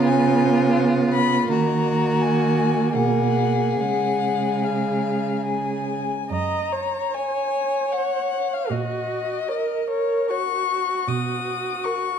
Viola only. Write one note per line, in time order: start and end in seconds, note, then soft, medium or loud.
0.00 1.46 B3 medium
1.49 3.82 A#3 medium
3.81 6.11 G#3 soft
6.30 6.74 D#5 medium
6.72 8.71 C#5 soft
8.70 9.50 F#4 soft
9.48 9.88 A#4 soft
9.88 10.31 A#4 soft
10.30 12.19 F#4 medium